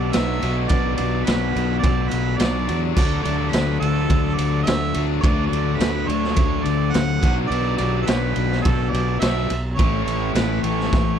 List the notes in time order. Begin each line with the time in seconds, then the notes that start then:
Already playing: B1 B2 F#3 B3 D4 F#4 D5
0.13 B1 B2 F#3 B3 D4 F#4 E5, snare, ride
0.41 B1 B2 F#3 B3 D4 F#4, ride
0.67 B1 D5, kick, ride
0.96 B1 D5, ride
1.25 B1 B2 F#3 B3 B4, snare, ride
1.56 B1, ride
1.79 D5
1.84 B1, kick, ride
2.08 B4, ride
2.12 B1
2.38 B1 B2 F#3 B3 D4 F#4 D5, snare, ride
2.69 E2, ride
2.94 D2 D3 F#3 A3 D4 D5, kick, crash
2.99 F#4
3.23 D2 D5, ride
3.50 D2 B4, snare, ride
3.80 D2 D3 A3 D4 A4, ride
4.10 D2, kick, ride
4.35 D5, ride
4.39 D2
4.64 E5, ride
4.68 D2, snare
4.94 D2 D3 F#3 A3 D4 F#4, ride
5.21 D2 D3 F#3 A3 C#5 D5, kick, ride
5.25 A3 D4 F#4
5.47 D5
5.52 D2, ride
5.76 D2 B4
5.80 snare, ride
6.08 D2 D3 A3 D4 C#5, ride
6.24 snare
6.36 D2, kick, ride
6.64 D2 D5, ride
6.92 D2 F#5, snare, ride
7.20 B1 B2 F#3 B3 D4 F#4, kick, ride
7.24 B3
7.48 B1 D5, ride
7.78 B1 D5, ride
8.02 A4 B4
8.07 B1 B2 F#3 B3, snare, ride
8.36 B1, ride
8.52 snare
8.62 B1 A4, kick, ride
8.90 B1 D5
8.94 ride
9.19 B1 B2 F#3 B3 D4 E5, snare, ride
9.23 F#4
9.50 B1, ride
9.75 A2 E3 A3 C#4 C#5, kick, ride
9.79 A1 A2 E3 A3 E4
10.04 A1 C#5, ride
10.34 A1 B4, snare, ride
10.63 A1 A3 C#5, ride
10.67 A2 E3
10.80 snare
10.92 A1, kick, snare